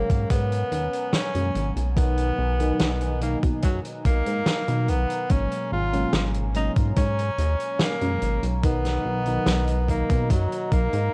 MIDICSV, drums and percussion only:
0, 0, Header, 1, 2, 480
1, 0, Start_track
1, 0, Key_signature, 5, "major"
1, 0, Tempo, 833333
1, 1133, Time_signature, 4, 2, 24, 8
1, 6414, End_track
2, 0, Start_track
2, 0, Title_t, "Drums"
2, 55, Note_on_c, 9, 42, 52
2, 56, Note_on_c, 9, 36, 105
2, 113, Note_off_c, 9, 42, 0
2, 114, Note_off_c, 9, 36, 0
2, 172, Note_on_c, 9, 42, 103
2, 173, Note_on_c, 9, 36, 107
2, 229, Note_off_c, 9, 42, 0
2, 231, Note_off_c, 9, 36, 0
2, 298, Note_on_c, 9, 42, 55
2, 356, Note_off_c, 9, 42, 0
2, 413, Note_on_c, 9, 42, 70
2, 471, Note_off_c, 9, 42, 0
2, 536, Note_on_c, 9, 42, 53
2, 594, Note_off_c, 9, 42, 0
2, 650, Note_on_c, 9, 38, 105
2, 653, Note_on_c, 9, 42, 94
2, 707, Note_off_c, 9, 38, 0
2, 710, Note_off_c, 9, 42, 0
2, 776, Note_on_c, 9, 42, 52
2, 833, Note_off_c, 9, 42, 0
2, 893, Note_on_c, 9, 42, 71
2, 951, Note_off_c, 9, 42, 0
2, 1017, Note_on_c, 9, 42, 57
2, 1075, Note_off_c, 9, 42, 0
2, 1133, Note_on_c, 9, 36, 118
2, 1135, Note_on_c, 9, 42, 99
2, 1191, Note_off_c, 9, 36, 0
2, 1193, Note_off_c, 9, 42, 0
2, 1253, Note_on_c, 9, 42, 59
2, 1311, Note_off_c, 9, 42, 0
2, 1496, Note_on_c, 9, 42, 60
2, 1554, Note_off_c, 9, 42, 0
2, 1610, Note_on_c, 9, 42, 100
2, 1612, Note_on_c, 9, 38, 118
2, 1667, Note_off_c, 9, 42, 0
2, 1670, Note_off_c, 9, 38, 0
2, 1732, Note_on_c, 9, 42, 59
2, 1790, Note_off_c, 9, 42, 0
2, 1851, Note_on_c, 9, 42, 77
2, 1909, Note_off_c, 9, 42, 0
2, 1976, Note_on_c, 9, 36, 107
2, 1978, Note_on_c, 9, 42, 48
2, 2034, Note_off_c, 9, 36, 0
2, 2036, Note_off_c, 9, 42, 0
2, 2087, Note_on_c, 9, 42, 106
2, 2093, Note_on_c, 9, 36, 112
2, 2145, Note_off_c, 9, 42, 0
2, 2151, Note_off_c, 9, 36, 0
2, 2216, Note_on_c, 9, 42, 59
2, 2273, Note_off_c, 9, 42, 0
2, 2332, Note_on_c, 9, 42, 74
2, 2333, Note_on_c, 9, 36, 105
2, 2389, Note_off_c, 9, 42, 0
2, 2391, Note_off_c, 9, 36, 0
2, 2454, Note_on_c, 9, 42, 57
2, 2512, Note_off_c, 9, 42, 0
2, 2569, Note_on_c, 9, 38, 110
2, 2570, Note_on_c, 9, 42, 101
2, 2626, Note_off_c, 9, 38, 0
2, 2627, Note_off_c, 9, 42, 0
2, 2695, Note_on_c, 9, 42, 54
2, 2752, Note_off_c, 9, 42, 0
2, 2811, Note_on_c, 9, 42, 69
2, 2869, Note_off_c, 9, 42, 0
2, 2936, Note_on_c, 9, 42, 58
2, 2993, Note_off_c, 9, 42, 0
2, 3049, Note_on_c, 9, 42, 85
2, 3053, Note_on_c, 9, 36, 117
2, 3107, Note_off_c, 9, 42, 0
2, 3111, Note_off_c, 9, 36, 0
2, 3176, Note_on_c, 9, 42, 54
2, 3234, Note_off_c, 9, 42, 0
2, 3417, Note_on_c, 9, 42, 51
2, 3475, Note_off_c, 9, 42, 0
2, 3531, Note_on_c, 9, 38, 113
2, 3531, Note_on_c, 9, 42, 88
2, 3588, Note_off_c, 9, 38, 0
2, 3589, Note_off_c, 9, 42, 0
2, 3654, Note_on_c, 9, 42, 58
2, 3711, Note_off_c, 9, 42, 0
2, 3770, Note_on_c, 9, 42, 78
2, 3827, Note_off_c, 9, 42, 0
2, 3894, Note_on_c, 9, 42, 56
2, 3896, Note_on_c, 9, 36, 106
2, 3951, Note_off_c, 9, 42, 0
2, 3954, Note_off_c, 9, 36, 0
2, 4011, Note_on_c, 9, 42, 94
2, 4013, Note_on_c, 9, 36, 117
2, 4068, Note_off_c, 9, 42, 0
2, 4070, Note_off_c, 9, 36, 0
2, 4139, Note_on_c, 9, 42, 52
2, 4197, Note_off_c, 9, 42, 0
2, 4252, Note_on_c, 9, 42, 74
2, 4309, Note_off_c, 9, 42, 0
2, 4375, Note_on_c, 9, 42, 50
2, 4433, Note_off_c, 9, 42, 0
2, 4489, Note_on_c, 9, 38, 116
2, 4493, Note_on_c, 9, 42, 97
2, 4546, Note_off_c, 9, 38, 0
2, 4550, Note_off_c, 9, 42, 0
2, 4615, Note_on_c, 9, 42, 47
2, 4672, Note_off_c, 9, 42, 0
2, 4733, Note_on_c, 9, 42, 70
2, 4791, Note_off_c, 9, 42, 0
2, 4855, Note_on_c, 9, 42, 59
2, 4913, Note_off_c, 9, 42, 0
2, 4972, Note_on_c, 9, 42, 88
2, 4974, Note_on_c, 9, 36, 120
2, 5029, Note_off_c, 9, 42, 0
2, 5031, Note_off_c, 9, 36, 0
2, 5096, Note_on_c, 9, 38, 38
2, 5096, Note_on_c, 9, 42, 52
2, 5153, Note_off_c, 9, 38, 0
2, 5154, Note_off_c, 9, 42, 0
2, 5332, Note_on_c, 9, 42, 51
2, 5390, Note_off_c, 9, 42, 0
2, 5450, Note_on_c, 9, 38, 107
2, 5452, Note_on_c, 9, 42, 92
2, 5508, Note_off_c, 9, 38, 0
2, 5510, Note_off_c, 9, 42, 0
2, 5573, Note_on_c, 9, 42, 53
2, 5630, Note_off_c, 9, 42, 0
2, 5694, Note_on_c, 9, 36, 62
2, 5697, Note_on_c, 9, 42, 65
2, 5751, Note_off_c, 9, 36, 0
2, 5755, Note_off_c, 9, 42, 0
2, 5816, Note_on_c, 9, 42, 53
2, 5817, Note_on_c, 9, 36, 108
2, 5873, Note_off_c, 9, 42, 0
2, 5874, Note_off_c, 9, 36, 0
2, 5934, Note_on_c, 9, 36, 112
2, 5934, Note_on_c, 9, 42, 100
2, 5991, Note_off_c, 9, 36, 0
2, 5992, Note_off_c, 9, 42, 0
2, 6060, Note_on_c, 9, 42, 56
2, 6117, Note_off_c, 9, 42, 0
2, 6173, Note_on_c, 9, 42, 68
2, 6174, Note_on_c, 9, 36, 107
2, 6231, Note_off_c, 9, 36, 0
2, 6231, Note_off_c, 9, 42, 0
2, 6294, Note_on_c, 9, 42, 52
2, 6352, Note_off_c, 9, 42, 0
2, 6414, End_track
0, 0, End_of_file